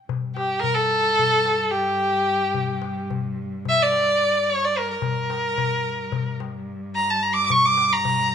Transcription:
0.08 5.03 G2 medium
0.08 darbuka dum medium
0.35 0.61 G4 medium
0.35 darbuka tek medium
0.59 0.76 A#4 medium
0.63 darbuka dum medium
0.74 1.72 A4 loud
1.19 darbuka dum medium
1.45 darbuka tek medium
1.70 3.03 G4 medium
2.54 darbuka dum medium
2.82 darbuka tek medium
3.10 darbuka dum medium
3.65 3.84 E5 loud
3.65 darbuka dum medium
3.82 4.51 D5 medium
3.92 darbuka tek medium
4.50 4.66 C#5 medium
4.64 4.79 D5 medium
4.77 4.90 A#4 medium
4.91 6.34 A#4 medium
5.02 8.35 G2 medium
5.02 darbuka dum loud
5.30 darbuka tek medium
5.58 darbuka dum medium
6.12 darbuka dum medium
6.40 darbuka tek medium
6.95 7.12 A#5 loud
7.10 7.24 A5 medium
7.23 7.35 A#5 medium
7.33 7.44 D6 loud
7.46 7.52 D6 medium
7.50 7.67 C#6 loud
7.50 darbuka dum loud
7.65 7.94 D6 loud
7.77 darbuka tek medium
7.92 8.35 A#5 loud
7.92 darbuka ka soft
8.05 darbuka dum medium

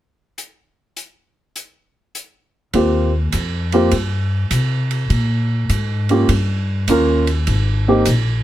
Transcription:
0.38 closed hi-hat soft
0.97 closed hi-hat soft
1.56 closed hi-hat soft
2.15 closed hi-hat soft
2.73 3.31 D#2 medium
2.73 3.09 A#3 soft
2.73 3.10 C4 soft
2.73 3.10 F4 soft
2.73 3.10 G4 soft
2.73 ride soft
3.32 3.90 F2 medium
3.32 hi-hat pedal soft
3.32 ride soft
3.72 3.90 A#3 soft
3.72 3.91 C4 soft
3.72 3.91 F4 soft
3.72 3.91 G4 medium
3.72 ride soft
3.91 4.49 G2 medium
3.91 ride soft
4.51 5.08 C3 medium
4.51 hi-hat pedal soft
4.51 ride soft
4.91 ride soft
5.10 5.67 A#2 medium
5.10 ride soft
5.69 6.27 G#2 medium
5.69 hi-hat pedal soft
5.69 ride soft
6.09 6.27 A#3 soft
6.09 6.27 C#4 soft
6.09 6.28 F4 soft
6.09 6.28 G4 medium
6.09 ride soft
6.29 6.86 G2 medium
6.29 ride soft
6.88 7.45 D#2 medium
6.88 7.24 A#3 soft
6.88 7.24 C#4 soft
6.88 7.24 F4 soft
6.88 7.25 A#4 medium
6.88 hi-hat pedal soft
6.88 ride soft
7.27 ride soft
7.47 8.04 G#1 medium
7.47 ride soft
7.88 8.05 A#3 medium
7.88 8.05 C4 medium
7.88 8.05 D#4 soft
7.88 8.05 G4 medium
8.05 8.43 A#1 medium
8.05 hi-hat pedal soft
8.05 ride soft

